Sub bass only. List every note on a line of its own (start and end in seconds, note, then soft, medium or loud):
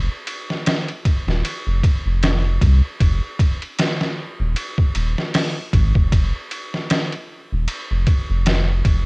1.27 1.42 D#1 loud
1.67 1.82 F1 medium
2.06 2.58 F1 medium
2.62 2.81 C2 medium
3.01 3.20 F1 loud
4.40 4.54 D#1 loud
4.96 5.15 D#1 loud
5.74 5.93 G#1 medium
5.96 6.10 F1 medium
6.13 6.32 F1 loud
7.53 7.67 D#1 loud
7.91 8.05 F1 medium
8.30 8.82 F1 medium
8.86 9.06 F1 loud